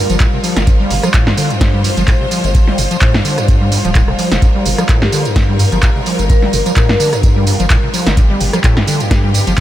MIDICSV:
0, 0, Header, 1, 6, 480
1, 0, Start_track
1, 0, Key_signature, -2, "minor"
1, 0, Tempo, 468750
1, 687, Time_signature, 4, 2, 24, 8
1, 9831, End_track
2, 0, Start_track
2, 0, Title_t, "Vibraphone"
2, 0, Program_c, 0, 11
2, 5139, Note_on_c, 0, 67, 91
2, 5338, Note_off_c, 0, 67, 0
2, 6447, Note_on_c, 0, 70, 94
2, 6552, Note_off_c, 0, 70, 0
2, 6579, Note_on_c, 0, 70, 94
2, 7246, Note_off_c, 0, 70, 0
2, 9831, End_track
3, 0, Start_track
3, 0, Title_t, "String section"
3, 0, Program_c, 1, 48
3, 0, Note_on_c, 1, 55, 84
3, 0, Note_on_c, 1, 65, 76
3, 0, Note_on_c, 1, 70, 96
3, 675, Note_off_c, 1, 70, 0
3, 687, Note_on_c, 1, 72, 96
3, 4515, Note_off_c, 1, 72, 0
3, 4528, Note_on_c, 1, 70, 94
3, 8355, Note_off_c, 1, 70, 0
3, 8367, Note_on_c, 1, 67, 94
3, 9831, Note_off_c, 1, 55, 0
3, 9831, Note_off_c, 1, 65, 0
3, 9831, Note_off_c, 1, 67, 0
3, 9831, End_track
4, 0, Start_track
4, 0, Title_t, "Acid bass"
4, 0, Program_c, 2, 38
4, 98, Note_on_c, 2, 53, 104
4, 158, Note_off_c, 2, 53, 0
4, 206, Note_on_c, 2, 45, 106
4, 279, Note_off_c, 2, 45, 0
4, 338, Note_on_c, 2, 48, 77
4, 398, Note_off_c, 2, 48, 0
4, 446, Note_on_c, 2, 53, 79
4, 578, Note_on_c, 2, 50, 78
4, 593, Note_off_c, 2, 53, 0
4, 638, Note_off_c, 2, 50, 0
4, 686, Note_on_c, 2, 43, 87
4, 730, Note_off_c, 2, 43, 0
4, 818, Note_on_c, 2, 55, 76
4, 926, Note_on_c, 2, 43, 103
4, 942, Note_off_c, 2, 55, 0
4, 970, Note_off_c, 2, 43, 0
4, 1058, Note_on_c, 2, 53, 104
4, 1118, Note_off_c, 2, 53, 0
4, 1167, Note_on_c, 2, 45, 105
4, 1299, Note_on_c, 2, 55, 76
4, 1314, Note_off_c, 2, 45, 0
4, 1335, Note_off_c, 2, 55, 0
4, 1407, Note_on_c, 2, 50, 103
4, 1539, Note_on_c, 2, 43, 77
4, 1554, Note_off_c, 2, 50, 0
4, 1647, Note_on_c, 2, 55, 86
4, 1662, Note_off_c, 2, 43, 0
4, 1690, Note_off_c, 2, 55, 0
4, 1779, Note_on_c, 2, 55, 77
4, 1868, Note_off_c, 2, 55, 0
4, 1887, Note_on_c, 2, 43, 79
4, 1996, Note_off_c, 2, 43, 0
4, 2019, Note_on_c, 2, 53, 103
4, 2078, Note_off_c, 2, 53, 0
4, 2127, Note_on_c, 2, 45, 103
4, 2199, Note_off_c, 2, 45, 0
4, 2259, Note_on_c, 2, 48, 76
4, 2318, Note_off_c, 2, 48, 0
4, 2366, Note_on_c, 2, 53, 78
4, 2498, Note_on_c, 2, 50, 80
4, 2514, Note_off_c, 2, 53, 0
4, 2558, Note_off_c, 2, 50, 0
4, 2606, Note_on_c, 2, 43, 86
4, 2650, Note_off_c, 2, 43, 0
4, 2739, Note_on_c, 2, 55, 78
4, 2847, Note_on_c, 2, 43, 101
4, 2862, Note_off_c, 2, 55, 0
4, 2890, Note_off_c, 2, 43, 0
4, 2979, Note_on_c, 2, 53, 102
4, 3038, Note_off_c, 2, 53, 0
4, 3087, Note_on_c, 2, 45, 101
4, 3219, Note_on_c, 2, 55, 79
4, 3234, Note_off_c, 2, 45, 0
4, 3254, Note_off_c, 2, 55, 0
4, 3326, Note_on_c, 2, 50, 106
4, 3459, Note_on_c, 2, 43, 80
4, 3474, Note_off_c, 2, 50, 0
4, 3567, Note_on_c, 2, 55, 83
4, 3582, Note_off_c, 2, 43, 0
4, 3610, Note_off_c, 2, 55, 0
4, 3699, Note_on_c, 2, 55, 80
4, 3788, Note_off_c, 2, 55, 0
4, 3807, Note_on_c, 2, 43, 79
4, 3916, Note_off_c, 2, 43, 0
4, 3939, Note_on_c, 2, 53, 102
4, 3998, Note_off_c, 2, 53, 0
4, 4047, Note_on_c, 2, 45, 106
4, 4119, Note_off_c, 2, 45, 0
4, 4179, Note_on_c, 2, 48, 77
4, 4238, Note_off_c, 2, 48, 0
4, 4287, Note_on_c, 2, 53, 81
4, 4419, Note_on_c, 2, 50, 78
4, 4434, Note_off_c, 2, 53, 0
4, 4478, Note_off_c, 2, 50, 0
4, 4527, Note_on_c, 2, 43, 88
4, 4570, Note_off_c, 2, 43, 0
4, 4659, Note_on_c, 2, 55, 75
4, 4767, Note_on_c, 2, 43, 99
4, 4782, Note_off_c, 2, 55, 0
4, 4810, Note_off_c, 2, 43, 0
4, 4899, Note_on_c, 2, 53, 104
4, 4958, Note_off_c, 2, 53, 0
4, 5007, Note_on_c, 2, 45, 98
4, 5139, Note_on_c, 2, 55, 80
4, 5154, Note_off_c, 2, 45, 0
4, 5174, Note_off_c, 2, 55, 0
4, 5247, Note_on_c, 2, 50, 104
4, 5379, Note_on_c, 2, 43, 78
4, 5394, Note_off_c, 2, 50, 0
4, 5487, Note_on_c, 2, 55, 84
4, 5502, Note_off_c, 2, 43, 0
4, 5531, Note_off_c, 2, 55, 0
4, 5619, Note_on_c, 2, 55, 77
4, 5708, Note_off_c, 2, 55, 0
4, 5727, Note_on_c, 2, 43, 78
4, 5836, Note_off_c, 2, 43, 0
4, 5859, Note_on_c, 2, 53, 108
4, 5919, Note_off_c, 2, 53, 0
4, 5968, Note_on_c, 2, 45, 102
4, 6040, Note_off_c, 2, 45, 0
4, 6099, Note_on_c, 2, 48, 78
4, 6158, Note_off_c, 2, 48, 0
4, 6208, Note_on_c, 2, 53, 79
4, 6339, Note_on_c, 2, 50, 80
4, 6355, Note_off_c, 2, 53, 0
4, 6398, Note_off_c, 2, 50, 0
4, 6448, Note_on_c, 2, 43, 85
4, 6491, Note_off_c, 2, 43, 0
4, 6579, Note_on_c, 2, 55, 76
4, 6687, Note_on_c, 2, 43, 106
4, 6703, Note_off_c, 2, 55, 0
4, 6731, Note_off_c, 2, 43, 0
4, 6819, Note_on_c, 2, 53, 103
4, 6879, Note_off_c, 2, 53, 0
4, 6928, Note_on_c, 2, 45, 104
4, 7059, Note_on_c, 2, 55, 79
4, 7074, Note_off_c, 2, 45, 0
4, 7095, Note_off_c, 2, 55, 0
4, 7167, Note_on_c, 2, 50, 105
4, 7299, Note_on_c, 2, 43, 79
4, 7314, Note_off_c, 2, 50, 0
4, 7407, Note_on_c, 2, 55, 82
4, 7423, Note_off_c, 2, 43, 0
4, 7451, Note_off_c, 2, 55, 0
4, 7539, Note_on_c, 2, 55, 78
4, 7628, Note_off_c, 2, 55, 0
4, 7647, Note_on_c, 2, 43, 80
4, 7756, Note_off_c, 2, 43, 0
4, 7779, Note_on_c, 2, 53, 105
4, 7838, Note_off_c, 2, 53, 0
4, 7887, Note_on_c, 2, 45, 102
4, 7959, Note_off_c, 2, 45, 0
4, 8019, Note_on_c, 2, 48, 75
4, 8078, Note_off_c, 2, 48, 0
4, 8127, Note_on_c, 2, 53, 78
4, 8259, Note_on_c, 2, 50, 78
4, 8274, Note_off_c, 2, 53, 0
4, 8318, Note_off_c, 2, 50, 0
4, 8367, Note_on_c, 2, 43, 86
4, 8410, Note_off_c, 2, 43, 0
4, 8499, Note_on_c, 2, 55, 78
4, 8607, Note_on_c, 2, 43, 104
4, 8622, Note_off_c, 2, 55, 0
4, 8650, Note_off_c, 2, 43, 0
4, 8738, Note_on_c, 2, 53, 101
4, 8798, Note_off_c, 2, 53, 0
4, 8846, Note_on_c, 2, 45, 101
4, 8978, Note_on_c, 2, 55, 80
4, 8993, Note_off_c, 2, 45, 0
4, 9014, Note_off_c, 2, 55, 0
4, 9086, Note_on_c, 2, 50, 104
4, 9218, Note_on_c, 2, 43, 80
4, 9233, Note_off_c, 2, 50, 0
4, 9326, Note_on_c, 2, 55, 85
4, 9341, Note_off_c, 2, 43, 0
4, 9370, Note_off_c, 2, 55, 0
4, 9458, Note_on_c, 2, 55, 78
4, 9548, Note_off_c, 2, 55, 0
4, 9567, Note_on_c, 2, 43, 78
4, 9676, Note_off_c, 2, 43, 0
4, 9698, Note_on_c, 2, 53, 105
4, 9758, Note_off_c, 2, 53, 0
4, 9831, End_track
5, 0, Start_track
5, 0, Title_t, "Sub bass"
5, 0, Program_c, 3, 38
5, 98, Note_on_c, 3, 31, 90
5, 170, Note_off_c, 3, 31, 0
5, 579, Note_on_c, 3, 31, 80
5, 868, Note_off_c, 3, 31, 0
5, 926, Note_on_c, 3, 31, 100
5, 1014, Note_off_c, 3, 31, 0
5, 1298, Note_on_c, 3, 43, 99
5, 1370, Note_off_c, 3, 43, 0
5, 1647, Note_on_c, 3, 43, 98
5, 1947, Note_off_c, 3, 43, 0
5, 2019, Note_on_c, 3, 31, 90
5, 2090, Note_off_c, 3, 31, 0
5, 2499, Note_on_c, 3, 31, 81
5, 2789, Note_off_c, 3, 31, 0
5, 2847, Note_on_c, 3, 31, 100
5, 2934, Note_off_c, 3, 31, 0
5, 3219, Note_on_c, 3, 43, 101
5, 3290, Note_off_c, 3, 43, 0
5, 3567, Note_on_c, 3, 43, 101
5, 3867, Note_off_c, 3, 43, 0
5, 3939, Note_on_c, 3, 26, 88
5, 4228, Note_off_c, 3, 26, 0
5, 4419, Note_on_c, 3, 29, 89
5, 4491, Note_off_c, 3, 29, 0
5, 4767, Note_on_c, 3, 31, 100
5, 4854, Note_off_c, 3, 31, 0
5, 5139, Note_on_c, 3, 43, 100
5, 5210, Note_off_c, 3, 43, 0
5, 5487, Note_on_c, 3, 43, 98
5, 5788, Note_off_c, 3, 43, 0
5, 5859, Note_on_c, 3, 31, 93
5, 5930, Note_off_c, 3, 31, 0
5, 6339, Note_on_c, 3, 31, 80
5, 6629, Note_off_c, 3, 31, 0
5, 6687, Note_on_c, 3, 31, 100
5, 6774, Note_off_c, 3, 31, 0
5, 7059, Note_on_c, 3, 43, 101
5, 7131, Note_off_c, 3, 43, 0
5, 7407, Note_on_c, 3, 43, 104
5, 7708, Note_off_c, 3, 43, 0
5, 7779, Note_on_c, 3, 31, 93
5, 7851, Note_off_c, 3, 31, 0
5, 8259, Note_on_c, 3, 31, 83
5, 8549, Note_off_c, 3, 31, 0
5, 8607, Note_on_c, 3, 31, 100
5, 8694, Note_off_c, 3, 31, 0
5, 8979, Note_on_c, 3, 43, 101
5, 9050, Note_off_c, 3, 43, 0
5, 9327, Note_on_c, 3, 43, 102
5, 9627, Note_off_c, 3, 43, 0
5, 9699, Note_on_c, 3, 31, 92
5, 9770, Note_off_c, 3, 31, 0
5, 9831, End_track
6, 0, Start_track
6, 0, Title_t, "Drums"
6, 98, Note_on_c, 9, 42, 54
6, 101, Note_on_c, 9, 54, 44
6, 200, Note_off_c, 9, 42, 0
6, 204, Note_off_c, 9, 54, 0
6, 207, Note_on_c, 9, 36, 127
6, 207, Note_on_c, 9, 39, 127
6, 207, Note_on_c, 9, 42, 69
6, 309, Note_off_c, 9, 36, 0
6, 309, Note_off_c, 9, 39, 0
6, 309, Note_off_c, 9, 42, 0
6, 447, Note_on_c, 9, 46, 96
6, 450, Note_on_c, 9, 54, 77
6, 549, Note_off_c, 9, 46, 0
6, 553, Note_off_c, 9, 54, 0
6, 579, Note_on_c, 9, 38, 86
6, 579, Note_on_c, 9, 42, 55
6, 582, Note_on_c, 9, 54, 45
6, 681, Note_off_c, 9, 38, 0
6, 681, Note_off_c, 9, 42, 0
6, 684, Note_off_c, 9, 54, 0
6, 686, Note_on_c, 9, 42, 65
6, 687, Note_on_c, 9, 36, 127
6, 690, Note_on_c, 9, 54, 33
6, 789, Note_off_c, 9, 36, 0
6, 789, Note_off_c, 9, 42, 0
6, 792, Note_off_c, 9, 54, 0
6, 927, Note_on_c, 9, 46, 111
6, 930, Note_on_c, 9, 54, 74
6, 1029, Note_off_c, 9, 46, 0
6, 1032, Note_off_c, 9, 54, 0
6, 1059, Note_on_c, 9, 37, 85
6, 1059, Note_on_c, 9, 42, 54
6, 1062, Note_on_c, 9, 54, 45
6, 1161, Note_off_c, 9, 37, 0
6, 1161, Note_off_c, 9, 42, 0
6, 1165, Note_off_c, 9, 54, 0
6, 1167, Note_on_c, 9, 36, 127
6, 1167, Note_on_c, 9, 39, 124
6, 1167, Note_on_c, 9, 42, 64
6, 1170, Note_on_c, 9, 54, 33
6, 1269, Note_off_c, 9, 36, 0
6, 1269, Note_off_c, 9, 42, 0
6, 1270, Note_off_c, 9, 39, 0
6, 1273, Note_off_c, 9, 54, 0
6, 1299, Note_on_c, 9, 38, 89
6, 1401, Note_off_c, 9, 38, 0
6, 1407, Note_on_c, 9, 46, 99
6, 1411, Note_on_c, 9, 54, 76
6, 1510, Note_off_c, 9, 46, 0
6, 1513, Note_off_c, 9, 54, 0
6, 1539, Note_on_c, 9, 42, 51
6, 1543, Note_on_c, 9, 54, 44
6, 1642, Note_off_c, 9, 42, 0
6, 1645, Note_off_c, 9, 54, 0
6, 1647, Note_on_c, 9, 36, 120
6, 1648, Note_on_c, 9, 38, 87
6, 1648, Note_on_c, 9, 42, 65
6, 1651, Note_on_c, 9, 54, 32
6, 1749, Note_off_c, 9, 36, 0
6, 1750, Note_off_c, 9, 38, 0
6, 1750, Note_off_c, 9, 42, 0
6, 1753, Note_off_c, 9, 54, 0
6, 1888, Note_on_c, 9, 46, 115
6, 1891, Note_on_c, 9, 54, 74
6, 1990, Note_off_c, 9, 46, 0
6, 1993, Note_off_c, 9, 54, 0
6, 2019, Note_on_c, 9, 42, 53
6, 2023, Note_on_c, 9, 54, 44
6, 2122, Note_off_c, 9, 42, 0
6, 2125, Note_off_c, 9, 54, 0
6, 2127, Note_on_c, 9, 36, 126
6, 2128, Note_on_c, 9, 39, 124
6, 2128, Note_on_c, 9, 42, 66
6, 2131, Note_on_c, 9, 54, 33
6, 2229, Note_off_c, 9, 36, 0
6, 2230, Note_off_c, 9, 42, 0
6, 2231, Note_off_c, 9, 39, 0
6, 2234, Note_off_c, 9, 54, 0
6, 2367, Note_on_c, 9, 46, 99
6, 2371, Note_on_c, 9, 54, 73
6, 2470, Note_off_c, 9, 46, 0
6, 2473, Note_off_c, 9, 54, 0
6, 2499, Note_on_c, 9, 42, 52
6, 2502, Note_on_c, 9, 54, 43
6, 2601, Note_off_c, 9, 42, 0
6, 2605, Note_off_c, 9, 54, 0
6, 2607, Note_on_c, 9, 36, 127
6, 2607, Note_on_c, 9, 42, 64
6, 2611, Note_on_c, 9, 54, 32
6, 2709, Note_off_c, 9, 36, 0
6, 2710, Note_off_c, 9, 42, 0
6, 2713, Note_off_c, 9, 54, 0
6, 2739, Note_on_c, 9, 38, 39
6, 2841, Note_off_c, 9, 38, 0
6, 2847, Note_on_c, 9, 46, 108
6, 2850, Note_on_c, 9, 54, 75
6, 2949, Note_off_c, 9, 46, 0
6, 2953, Note_off_c, 9, 54, 0
6, 2979, Note_on_c, 9, 42, 54
6, 2982, Note_on_c, 9, 54, 45
6, 3081, Note_off_c, 9, 42, 0
6, 3084, Note_off_c, 9, 54, 0
6, 3087, Note_on_c, 9, 36, 127
6, 3087, Note_on_c, 9, 42, 63
6, 3088, Note_on_c, 9, 39, 118
6, 3091, Note_on_c, 9, 54, 34
6, 3189, Note_off_c, 9, 36, 0
6, 3190, Note_off_c, 9, 39, 0
6, 3190, Note_off_c, 9, 42, 0
6, 3193, Note_off_c, 9, 54, 0
6, 3219, Note_on_c, 9, 38, 93
6, 3322, Note_off_c, 9, 38, 0
6, 3327, Note_on_c, 9, 46, 101
6, 3330, Note_on_c, 9, 54, 81
6, 3429, Note_off_c, 9, 46, 0
6, 3433, Note_off_c, 9, 54, 0
6, 3459, Note_on_c, 9, 37, 63
6, 3459, Note_on_c, 9, 42, 52
6, 3463, Note_on_c, 9, 54, 45
6, 3562, Note_off_c, 9, 37, 0
6, 3562, Note_off_c, 9, 42, 0
6, 3565, Note_off_c, 9, 54, 0
6, 3567, Note_on_c, 9, 36, 123
6, 3567, Note_on_c, 9, 42, 65
6, 3571, Note_on_c, 9, 54, 32
6, 3669, Note_off_c, 9, 36, 0
6, 3670, Note_off_c, 9, 42, 0
6, 3673, Note_off_c, 9, 54, 0
6, 3807, Note_on_c, 9, 46, 112
6, 3811, Note_on_c, 9, 54, 76
6, 3910, Note_off_c, 9, 46, 0
6, 3913, Note_off_c, 9, 54, 0
6, 3939, Note_on_c, 9, 42, 51
6, 3942, Note_on_c, 9, 54, 44
6, 4042, Note_off_c, 9, 42, 0
6, 4045, Note_off_c, 9, 54, 0
6, 4047, Note_on_c, 9, 36, 127
6, 4047, Note_on_c, 9, 42, 64
6, 4048, Note_on_c, 9, 39, 119
6, 4051, Note_on_c, 9, 54, 33
6, 4149, Note_off_c, 9, 36, 0
6, 4150, Note_off_c, 9, 39, 0
6, 4150, Note_off_c, 9, 42, 0
6, 4153, Note_off_c, 9, 54, 0
6, 4179, Note_on_c, 9, 37, 63
6, 4281, Note_off_c, 9, 37, 0
6, 4287, Note_on_c, 9, 46, 95
6, 4290, Note_on_c, 9, 54, 78
6, 4389, Note_off_c, 9, 46, 0
6, 4393, Note_off_c, 9, 54, 0
6, 4419, Note_on_c, 9, 38, 88
6, 4419, Note_on_c, 9, 42, 52
6, 4422, Note_on_c, 9, 54, 43
6, 4521, Note_off_c, 9, 38, 0
6, 4521, Note_off_c, 9, 42, 0
6, 4525, Note_off_c, 9, 54, 0
6, 4527, Note_on_c, 9, 36, 123
6, 4527, Note_on_c, 9, 42, 65
6, 4530, Note_on_c, 9, 54, 35
6, 4629, Note_off_c, 9, 36, 0
6, 4630, Note_off_c, 9, 42, 0
6, 4633, Note_off_c, 9, 54, 0
6, 4767, Note_on_c, 9, 46, 105
6, 4770, Note_on_c, 9, 54, 79
6, 4869, Note_off_c, 9, 46, 0
6, 4873, Note_off_c, 9, 54, 0
6, 4899, Note_on_c, 9, 37, 89
6, 4899, Note_on_c, 9, 42, 52
6, 4902, Note_on_c, 9, 54, 46
6, 5001, Note_off_c, 9, 37, 0
6, 5001, Note_off_c, 9, 42, 0
6, 5005, Note_off_c, 9, 54, 0
6, 5007, Note_on_c, 9, 36, 124
6, 5007, Note_on_c, 9, 42, 65
6, 5008, Note_on_c, 9, 39, 113
6, 5011, Note_on_c, 9, 54, 33
6, 5109, Note_off_c, 9, 36, 0
6, 5110, Note_off_c, 9, 39, 0
6, 5110, Note_off_c, 9, 42, 0
6, 5113, Note_off_c, 9, 54, 0
6, 5139, Note_on_c, 9, 38, 91
6, 5241, Note_off_c, 9, 38, 0
6, 5247, Note_on_c, 9, 46, 95
6, 5250, Note_on_c, 9, 54, 83
6, 5349, Note_off_c, 9, 46, 0
6, 5353, Note_off_c, 9, 54, 0
6, 5379, Note_on_c, 9, 42, 53
6, 5382, Note_on_c, 9, 54, 45
6, 5481, Note_off_c, 9, 42, 0
6, 5485, Note_off_c, 9, 54, 0
6, 5487, Note_on_c, 9, 36, 120
6, 5487, Note_on_c, 9, 38, 90
6, 5487, Note_on_c, 9, 42, 66
6, 5491, Note_on_c, 9, 54, 35
6, 5589, Note_off_c, 9, 36, 0
6, 5590, Note_off_c, 9, 38, 0
6, 5590, Note_off_c, 9, 42, 0
6, 5593, Note_off_c, 9, 54, 0
6, 5727, Note_on_c, 9, 46, 108
6, 5730, Note_on_c, 9, 54, 79
6, 5830, Note_off_c, 9, 46, 0
6, 5833, Note_off_c, 9, 54, 0
6, 5859, Note_on_c, 9, 42, 51
6, 5862, Note_on_c, 9, 54, 46
6, 5961, Note_off_c, 9, 42, 0
6, 5964, Note_off_c, 9, 54, 0
6, 5967, Note_on_c, 9, 36, 122
6, 5967, Note_on_c, 9, 39, 116
6, 5967, Note_on_c, 9, 42, 65
6, 5970, Note_on_c, 9, 54, 34
6, 6069, Note_off_c, 9, 36, 0
6, 6069, Note_off_c, 9, 42, 0
6, 6070, Note_off_c, 9, 39, 0
6, 6073, Note_off_c, 9, 54, 0
6, 6207, Note_on_c, 9, 46, 92
6, 6210, Note_on_c, 9, 54, 80
6, 6309, Note_off_c, 9, 46, 0
6, 6312, Note_off_c, 9, 54, 0
6, 6339, Note_on_c, 9, 42, 51
6, 6342, Note_on_c, 9, 54, 47
6, 6441, Note_off_c, 9, 42, 0
6, 6445, Note_off_c, 9, 54, 0
6, 6447, Note_on_c, 9, 36, 120
6, 6447, Note_on_c, 9, 42, 66
6, 6450, Note_on_c, 9, 54, 36
6, 6549, Note_off_c, 9, 36, 0
6, 6549, Note_off_c, 9, 42, 0
6, 6553, Note_off_c, 9, 54, 0
6, 6579, Note_on_c, 9, 38, 38
6, 6681, Note_off_c, 9, 38, 0
6, 6687, Note_on_c, 9, 46, 101
6, 6690, Note_on_c, 9, 54, 82
6, 6789, Note_off_c, 9, 46, 0
6, 6792, Note_off_c, 9, 54, 0
6, 6819, Note_on_c, 9, 42, 55
6, 6822, Note_on_c, 9, 54, 50
6, 6921, Note_off_c, 9, 42, 0
6, 6925, Note_off_c, 9, 54, 0
6, 6927, Note_on_c, 9, 36, 118
6, 6927, Note_on_c, 9, 39, 117
6, 6927, Note_on_c, 9, 42, 65
6, 6930, Note_on_c, 9, 54, 34
6, 7029, Note_off_c, 9, 36, 0
6, 7029, Note_off_c, 9, 42, 0
6, 7030, Note_off_c, 9, 39, 0
6, 7033, Note_off_c, 9, 54, 0
6, 7059, Note_on_c, 9, 38, 91
6, 7161, Note_off_c, 9, 38, 0
6, 7167, Note_on_c, 9, 46, 93
6, 7170, Note_on_c, 9, 54, 86
6, 7269, Note_off_c, 9, 46, 0
6, 7273, Note_off_c, 9, 54, 0
6, 7299, Note_on_c, 9, 37, 66
6, 7299, Note_on_c, 9, 42, 54
6, 7302, Note_on_c, 9, 54, 48
6, 7401, Note_off_c, 9, 37, 0
6, 7401, Note_off_c, 9, 42, 0
6, 7404, Note_off_c, 9, 54, 0
6, 7407, Note_on_c, 9, 36, 116
6, 7407, Note_on_c, 9, 42, 68
6, 7410, Note_on_c, 9, 54, 36
6, 7509, Note_off_c, 9, 36, 0
6, 7510, Note_off_c, 9, 42, 0
6, 7513, Note_off_c, 9, 54, 0
6, 7647, Note_on_c, 9, 46, 102
6, 7650, Note_on_c, 9, 54, 85
6, 7749, Note_off_c, 9, 46, 0
6, 7753, Note_off_c, 9, 54, 0
6, 7779, Note_on_c, 9, 42, 53
6, 7783, Note_on_c, 9, 54, 47
6, 7882, Note_off_c, 9, 42, 0
6, 7885, Note_off_c, 9, 54, 0
6, 7887, Note_on_c, 9, 36, 121
6, 7887, Note_on_c, 9, 42, 67
6, 7888, Note_on_c, 9, 39, 116
6, 7891, Note_on_c, 9, 54, 35
6, 7989, Note_off_c, 9, 36, 0
6, 7990, Note_off_c, 9, 39, 0
6, 7990, Note_off_c, 9, 42, 0
6, 7993, Note_off_c, 9, 54, 0
6, 8127, Note_on_c, 9, 46, 88
6, 8130, Note_on_c, 9, 54, 82
6, 8229, Note_off_c, 9, 46, 0
6, 8233, Note_off_c, 9, 54, 0
6, 8259, Note_on_c, 9, 38, 87
6, 8259, Note_on_c, 9, 42, 53
6, 8262, Note_on_c, 9, 54, 47
6, 8361, Note_off_c, 9, 38, 0
6, 8361, Note_off_c, 9, 42, 0
6, 8365, Note_off_c, 9, 54, 0
6, 8367, Note_on_c, 9, 36, 117
6, 8367, Note_on_c, 9, 42, 70
6, 8371, Note_on_c, 9, 54, 35
6, 8469, Note_off_c, 9, 36, 0
6, 8470, Note_off_c, 9, 42, 0
6, 8473, Note_off_c, 9, 54, 0
6, 8607, Note_on_c, 9, 46, 99
6, 8610, Note_on_c, 9, 54, 82
6, 8709, Note_off_c, 9, 46, 0
6, 8712, Note_off_c, 9, 54, 0
6, 8739, Note_on_c, 9, 37, 91
6, 8739, Note_on_c, 9, 42, 57
6, 8742, Note_on_c, 9, 54, 49
6, 8841, Note_off_c, 9, 37, 0
6, 8841, Note_off_c, 9, 42, 0
6, 8845, Note_off_c, 9, 54, 0
6, 8847, Note_on_c, 9, 36, 116
6, 8847, Note_on_c, 9, 42, 69
6, 8848, Note_on_c, 9, 39, 115
6, 8851, Note_on_c, 9, 54, 35
6, 8949, Note_off_c, 9, 36, 0
6, 8950, Note_off_c, 9, 39, 0
6, 8950, Note_off_c, 9, 42, 0
6, 8953, Note_off_c, 9, 54, 0
6, 8979, Note_on_c, 9, 38, 84
6, 9081, Note_off_c, 9, 38, 0
6, 9087, Note_on_c, 9, 46, 92
6, 9090, Note_on_c, 9, 54, 86
6, 9190, Note_off_c, 9, 46, 0
6, 9193, Note_off_c, 9, 54, 0
6, 9219, Note_on_c, 9, 42, 55
6, 9222, Note_on_c, 9, 54, 49
6, 9321, Note_off_c, 9, 42, 0
6, 9325, Note_off_c, 9, 54, 0
6, 9327, Note_on_c, 9, 36, 113
6, 9328, Note_on_c, 9, 38, 85
6, 9328, Note_on_c, 9, 42, 68
6, 9331, Note_on_c, 9, 54, 35
6, 9429, Note_off_c, 9, 36, 0
6, 9430, Note_off_c, 9, 38, 0
6, 9430, Note_off_c, 9, 42, 0
6, 9433, Note_off_c, 9, 54, 0
6, 9567, Note_on_c, 9, 46, 100
6, 9571, Note_on_c, 9, 54, 84
6, 9670, Note_off_c, 9, 46, 0
6, 9673, Note_off_c, 9, 54, 0
6, 9699, Note_on_c, 9, 42, 55
6, 9703, Note_on_c, 9, 54, 48
6, 9802, Note_off_c, 9, 42, 0
6, 9805, Note_off_c, 9, 54, 0
6, 9831, End_track
0, 0, End_of_file